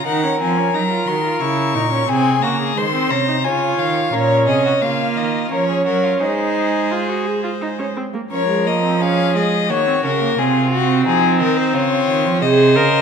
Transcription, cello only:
0.07 D#3
0.41 F3
0.74 F#3
1.08 D#3
1.41 C#3
1.75 A#2
2.09 C3
2.42 C#3
2.77 D#3
3.11 C3
3.45 C#3
3.79 D#3
4.13 A#2
4.48 C3
4.82 C#3
5.17 D#3
5.51 F3
5.86 F#3
6.21 G#3
8.31 F3
9.69 D#3
10.04 C#3
10.38 C3
11.06 F3
11.40 D#3
11.74 C#3
12.08 D#3
12.25 F3
12.42 C3
12.76 C#3

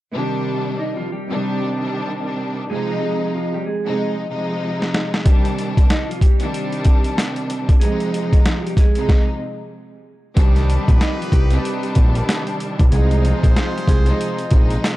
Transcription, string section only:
0.14 C3 D#3 G3 D4
1.30 C3 D#3 G3 D4
2.69 C3 F3 G#3 D#4
3.85 C3 F3 G#3 D#4
4.30 C3 F3 G#3 D#4
5.24 C3 D#3 G3 D4
6.40 C3 D#3 G3 D4
7.80 C3 F3 G#3 D#4
8.96 C3 F3 G#3 D#4
10.35 C3 D#3 G3 D4
11.51 C3 D#3 G3 D4
12.91 C3 F3 G#3 D#4
14.06 C3 F3 G#3 D#4
14.51 C3 F3 G#3 D#4

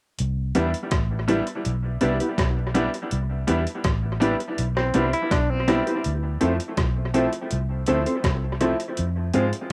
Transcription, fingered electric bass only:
0.20 C2
0.57 E2
0.92 A1
1.66 B1
2.03 C2
2.39 B1
3.12 C2
3.49 E2
3.85 A1
4.59 B1
4.96 C2
5.32 B1
6.06 D2
6.42 F2
6.78 B1
7.52 C2
7.89 D2
8.25 C2
8.99 F2
9.36 G#2

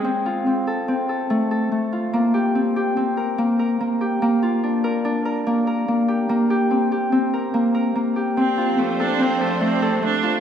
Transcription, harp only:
Already playing: G#3 A#3 F4 G#4
0.04 C4
0.26 F4
0.47 C4
0.67 A4
0.88 C4
1.09 A4
1.30 A3
1.51 A4
1.72 A3
1.93 F4
2.13 A#3
2.34 G4
2.55 C4
2.76 G4
2.97 C4
3.17 A#4
3.38 A#3
3.59 A#4
3.81 A#3
4.01 G4
4.22 A#3
4.43 F4
4.63 D4
4.84 A#4
5.05 D4
5.25 A#4
5.47 A#3
5.67 A#4
5.88 A#3
6.08 G4
6.29 A#3
6.50 G4
6.71 C4
6.92 G4
7.12 C4
7.33 A#4
7.54 A#3
7.75 A#4
7.95 A#3
8.16 G4
8.37 C4
8.58 F4
8.78 C4
9.00 A4
9.20 C4
9.41 A4
9.61 A3
9.82 A4
10.02 A3
10.23 F4

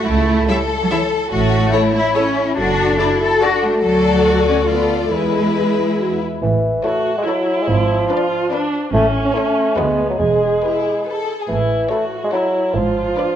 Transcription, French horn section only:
0.49 E4 C#5
0.91 E4 C#5
1.31 E4 C#5
2.57 F#4 A4
4.68 F4
5.12 E4 B4
5.55 G#4
5.78 E4
5.99 F#4
6.21 E4

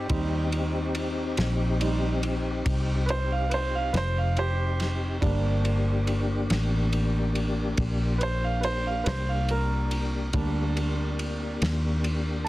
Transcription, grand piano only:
Already playing: G4
0.09 G3 C4 D#4
1.80 G3 C4 D#4
3.06 B4
3.10 C5
3.32 F5
3.50 B4
3.54 C5
3.75 F5
3.93 B4
3.97 C5
4.18 F5
4.38 G4 C5
5.21 G3 A#3 D4
8.18 B4
8.23 C5
8.44 F5
8.61 B4 C5
8.87 F5
9.04 B4
9.08 C5
9.29 F5
9.51 A#4
10.33 G3 A#3 D4
12.45 A5

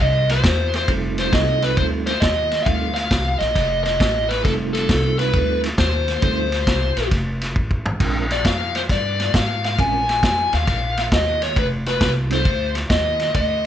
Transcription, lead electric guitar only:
0.02 D#5
0.31 C5
0.76 C5
1.19 C5
1.34 D#5
1.63 B4
1.77 C5
2.06 C5
2.20 D#5
2.63 E5 F5
2.95 F5
3.39 D#5
3.84 D#5
4.29 B4
4.44 A4
4.73 A4
5.19 B4
5.78 C5
6.23 C5
8.32 D5
8.46 F5
8.76 C5
8.91 D5
9.36 F5
9.65 F5
9.80 G#5
10.09 G#5
10.25 G#5
10.54 F5
10.99 F5
11.13 D#5
11.43 C#5
11.58 B4
11.88 B4
12.03 B4
12.33 C5
12.90 D#5
13.35 D#5

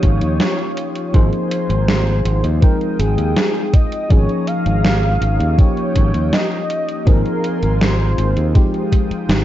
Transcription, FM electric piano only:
Already playing: F3 A#3 C#4 D#4 G4
1.12 F3 A#3 C4 D#4 G#4
2.61 F3 G#3 C4 D#4 G5
4.09 F3 A#3 C#4 D#4 G#4
5.57 F3 A#3 C#4 D#4 G4
7.05 F3 A#3 C4 D#4 G#4
8.54 F3 G#3 C4 D#4 G4

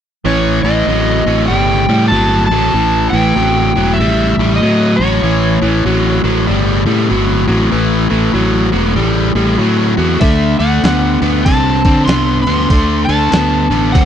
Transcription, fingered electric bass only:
0.25 A1
0.64 A1
0.87 A1
1.26 A1
1.50 G1
1.89 A2
2.12 G1
2.50 A1
2.74 A1
3.13 A1
3.36 A1
3.76 E1
3.99 A1
4.38 A1
4.61 A2
4.99 A1
5.22 A1
5.62 A1
5.85 A1
6.24 A1
6.49 G1
6.87 A2
7.11 G1
7.49 A1
7.72 A1
8.12 A1
8.34 A1
8.73 E1
8.96 A1
9.35 A1
9.58 A2
9.98 E2
10.21 D2
10.60 D2
10.83 D2
11.22 D2
11.46 C2
11.85 D3
12.07 C2
12.46 D2
12.70 D2
13.09 D2
13.32 D2
13.70 A1
13.95 D2

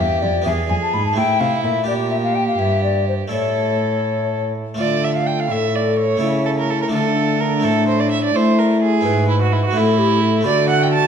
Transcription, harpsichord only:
Already playing: G4
0.00 E2
0.23 F2
0.42 B3 D4 G#4
0.46 E2
0.70 F2
0.94 G#2
1.13 A3 C4 E4
1.18 A2
1.41 C3
1.65 A#2
1.84 D4 G4
1.88 A#2
2.59 G2
3.28 A3 E4 A4
3.32 A2
4.74 A3 F4 A4
4.79 D3
5.50 A2
6.17 A3 E4 A4
6.21 C#3
6.88 A3 D4 F4
6.93 D3
7.59 A3 C4 E4
7.64 A2
8.35 A3
9.01 B3 E4
9.06 G#2
9.71 A3 C4 E4
9.75 A2
10.41 A3 C4 F#4
10.45 D3

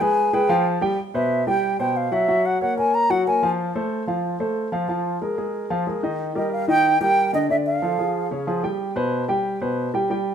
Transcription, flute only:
0.01 G#5
0.34 G5
1.15 E5
1.48 G5
1.80 G5
1.97 F5
2.13 E5
2.46 F#5
2.62 F#5
2.78 G#5
2.94 A#5
3.10 F#5
3.27 G#5
6.37 D#5
6.53 F5
6.69 G5
7.02 G5
7.34 D#5
7.51 E5
7.66 F5

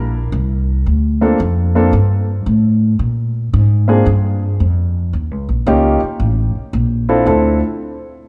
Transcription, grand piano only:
1.21 A#3 C4 D4 F4 A4
1.75 A#3 C4 D4 F4 A4
3.88 A#3 C4 D4 F4 G#4
5.67 A#3 C#4 D#4 F4 G4
7.09 C4 D4 E4 F4 A4
7.26 C4 D4 E4 F4 A4

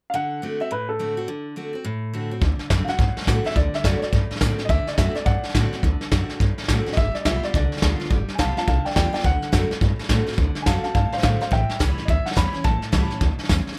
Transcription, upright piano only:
0.10 F5
0.15 F#5
0.61 E5
0.72 B4
0.89 A4
2.84 F5
2.89 F#5
3.46 E5
3.57 D5
3.75 E5
3.85 D5
3.99 C#5
4.03 D5
4.65 D#5
4.70 E5
4.88 D5
4.94 D#5
4.98 E5
5.15 D5
5.25 D5 F#5
6.93 D#5
6.97 E5
7.14 D5
7.21 D#5
7.26 E5
7.44 D5
7.55 D5
8.35 G#5
8.39 F5 A5
8.58 F5 A5
8.68 F5 A5
8.85 D5 G5
8.96 D5 G5
9.13 D5 G5
9.25 F#5
10.62 G#5
10.67 F5 A5
10.84 F5 A5
10.95 F5 A5
11.13 C5 F5
11.24 C5 F5
11.42 C5 F5
11.52 E5 G5
12.05 D#5
12.10 E5
12.26 F#5
12.37 B5
12.64 A5

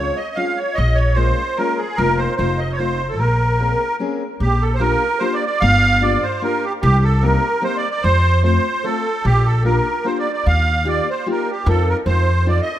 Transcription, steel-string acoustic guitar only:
Already playing: G#3 C4 C#4 F4
0.37 G#3 C4 C#4 F4
1.16 G#3 A#3 C#4 F4
1.58 G#3 A#3 C#4 F4
1.99 A#3 C4 D#4 F4
2.38 A3 C4 D#4 F4
2.79 A3 C4 D#4 F4
3.59 A#3 C4 C#4 G#4
4.00 A#3 C4 C#4 G#4
4.79 A#3 D4 F4 G4
5.21 A#3 D4 F4 G4
6.01 A#3 D4 F4 G4
6.42 A#3 D4 F4 G4
7.22 A#3 C4 D#4 G4
7.61 A#3 C4 D#4 G4
8.43 A3 C4 F4 A4
8.84 A3 C4 F4 A4
9.65 A#3 D4 F4 G4
10.04 A#3 D4 F4 G4
10.85 A#3 D#4 F4 G4
11.26 A#3 D#4 F4 G4
11.66 C4 D#4 F4 A#4
12.07 C4 D#4 F4 A4
12.46 C4 D#4 F4 A4

